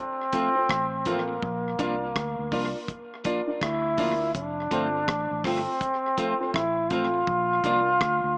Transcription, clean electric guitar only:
0.33 0.48 F3 medium
0.33 0.48 A3 medium
0.33 0.48 C4 medium
0.33 0.49 F4 medium
0.55 muted clean electric guitar stroke soft
1.06 1.21 F3 medium
1.06 1.21 A3 medium
1.06 1.21 C4 medium
1.06 1.22 F4 medium
1.28 muted clean electric guitar stroke soft
1.79 1.94 F3 medium
1.79 1.94 A#3 loud
1.79 1.95 D4 loud
1.79 1.95 F4 loud
2.52 2.67 F3 medium
2.52 2.67 A#3 medium
2.52 2.67 D4 medium
2.52 2.68 F4 medium
3.24 3.40 F3 medium
3.24 3.40 A#3 medium
3.24 3.40 D4 medium
3.24 3.41 F4 medium
3.98 4.13 F3 medium
3.98 4.13 A#3 loud
3.98 4.14 D4 medium
3.98 4.14 F4 loud
4.21 muted clean electric guitar stroke medium
4.71 4.86 F3 medium
4.71 4.87 A3 medium
4.71 4.87 C4 medium
4.71 4.87 F4 loud
5.45 5.60 F3 medium
5.45 5.60 A3 medium
5.45 5.60 C4 medium
5.45 5.61 F4 medium
6.17 6.33 F3 medium
6.17 6.33 A3 medium
6.17 6.33 C4 medium
6.17 6.34 F4 medium
6.91 7.06 F3 medium
6.91 7.07 A3 medium
6.91 7.07 C4 medium
6.91 7.07 F4 medium
7.14 muted clean electric guitar stroke soft
7.64 7.79 F3 medium
7.64 7.80 A#3 medium
7.64 7.80 D4 medium
7.64 7.80 F4 medium

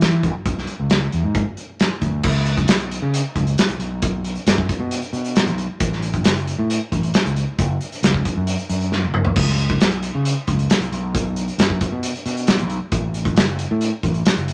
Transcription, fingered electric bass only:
0.00 0.25 E3 medium
0.24 0.33 B1 medium
0.46 0.65 B1 loud
0.80 1.07 C#2 medium
1.13 1.22 E2 medium
1.23 1.42 G#2 medium
2.02 2.21 D2 medium
2.24 2.69 C#2 loud
2.69 2.97 B1 medium
3.02 3.21 C#3 loud
3.35 3.54 C#2 medium
3.68 3.78 B1 medium
3.79 4.36 B1 medium
4.47 4.66 F#2 medium
4.80 4.99 B2 loud
5.13 5.48 B2 medium
5.47 5.66 B1 medium
5.80 6.25 A1 medium
6.25 6.53 F#1 medium
6.58 6.77 A2 loud
6.92 7.11 A1 medium
7.26 7.44 C#2 medium
7.58 7.77 F#1 loud
8.03 8.21 C#2 medium
8.36 8.55 F#2 medium
8.69 9.04 F#2 medium
9.03 9.21 F#1 medium
9.36 9.81 C#2 medium
9.81 10.09 B1 medium
10.15 10.33 C#3 loud
10.48 10.66 C#2 medium
10.81 10.90 B1 medium
10.92 11.48 B1 loud
11.58 11.77 F#2 medium
11.92 12.11 B2 medium
12.26 12.61 B2 medium
12.60 12.78 B1 medium
12.92 13.38 A1 loud
13.38 13.65 F#1 loud
13.71 13.89 A2 loud
14.03 14.22 A1 medium
14.37 14.53 F#1 loud

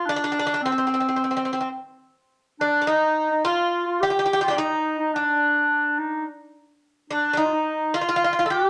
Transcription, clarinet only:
0.06 0.63 D4 medium
0.62 1.75 C4 medium
2.60 2.89 D4 medium
2.88 3.30 D#4 medium
3.31 3.47 D#4 medium
3.45 3.86 F4 medium
3.87 4.02 F4 medium
4.00 4.42 G4 medium
4.43 4.59 F4 medium
4.57 4.98 D#4 medium
4.99 5.12 D#4 medium
5.13 6.00 D4 medium
5.99 6.26 D#4 medium
7.10 7.41 D4 medium
7.39 7.47 D#4 medium
7.45 7.53 F4 medium
7.52 7.96 D#4 medium
7.95 8.53 F4 medium
8.51 8.70 G4 medium

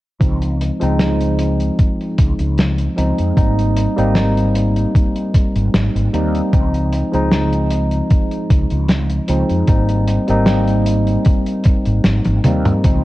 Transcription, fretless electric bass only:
0.21 0.69 C#2 medium
0.82 1.68 C#2 medium
2.19 2.32 C#2 medium
2.39 2.87 C#2 medium
2.98 3.11 C#2 medium
3.19 3.30 F2 medium
3.37 3.85 G#1 medium
3.98 4.84 G#1 medium
5.55 5.67 G#1 medium
5.74 5.87 G#1 medium
5.95 6.07 G#1 medium
6.13 6.39 D#2 medium
6.53 7.01 C#2 medium
7.13 8.00 C#2 medium
8.50 8.63 C#2 medium
8.71 9.18 C#2 medium
9.29 9.42 C#2 medium
9.50 9.62 F2 medium
9.68 10.17 G#1 medium
10.29 11.16 G#1 medium
11.87 11.98 G#1 medium
12.05 12.19 G#1 medium
12.26 12.38 G#1 medium
12.45 12.71 D#2 medium
12.84 13.04 C#2 medium

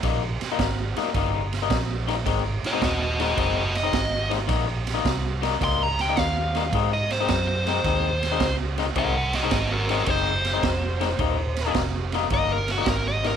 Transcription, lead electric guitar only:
2.66 2.83 F#4 medium
2.66 2.83 D#5 medium
2.84 3.01 F#4 medium
2.84 3.02 D#5 medium
3.02 3.19 F#4 medium
3.02 3.20 D#5 medium
3.21 3.38 F#4 medium
3.21 3.39 D#5 medium
3.40 3.56 F#4 medium
3.40 3.56 D#5 medium
3.57 3.74 F#4 medium
3.57 3.75 D#5 medium
3.77 4.30 D#5 medium
5.64 5.83 C6 medium
5.83 6.01 A#5 medium
6.01 6.19 G5 medium
6.19 6.90 F5 medium
6.93 7.10 D#5 medium
7.12 7.29 C5 medium
7.30 7.47 C5 medium
7.48 8.56 C5 medium
8.98 9.15 A#4 medium
8.98 9.15 F#5 medium
9.16 9.33 A#4 medium
9.16 9.34 F#5 medium
9.35 9.50 F#4 medium
9.35 9.51 D#5 medium
9.52 9.69 F#4 medium
9.52 9.70 D#5 medium
9.72 9.88 F#4 medium
9.72 9.90 A#4 medium
9.90 10.07 F#4 medium
9.90 10.09 A#4 medium
10.09 11.72 C5 medium
12.34 12.50 D#5 medium
12.52 12.69 A#4 medium
12.71 12.88 F#4 medium
12.90 13.06 A#4 medium
13.08 13.25 D#5 loud
13.27 13.37 A#4 medium

